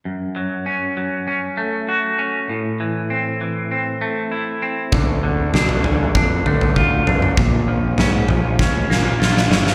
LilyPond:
<<
  \new Staff \with { instrumentName = "Clean electric guitar" } { \time 4/4 \key a \major \tempo 4 = 98 fis,8 fis8 cis'8 fis8 cis'8 a8 fis'8 cis'8 | a,8 e8 c'8 e8 c'8 a8 e'8 c'8 | d8 d8 d'8 d8 d'8 a8 f'8 d'8 | ais,8 eis8 cis'8 eis8 cis'8 ais8 eis'8 cis'8 | }
  \new Staff \with { instrumentName = "Picked electric bass" } { \clef bass \time 4/4 \key a \major r1 | r1 | d,8 d,8 b,8 d,8 f,8 d8 d,8 fis,8 | ais,,8 ais,,8 gis,8 ais,,8 cis,8 ais,8 ais,,8 g,,8 | }
  \new DrumStaff \with { instrumentName = "Drums" } \drummode { \time 4/4 r4 r4 r4 r4 | r4 r4 r4 r4 | <bd tomfh>4 <sn tomfh>16 tomfh16 tomfh8 <bd tomfh>8 tomfh16 tomfh16 bd8 tomfh16 toml16 | <bd tomfh>4 <sn tomfh>8 <tomfh toml>8 <bd sn>8 sn8 sn16 sn16 sn16 sn16 | }
>>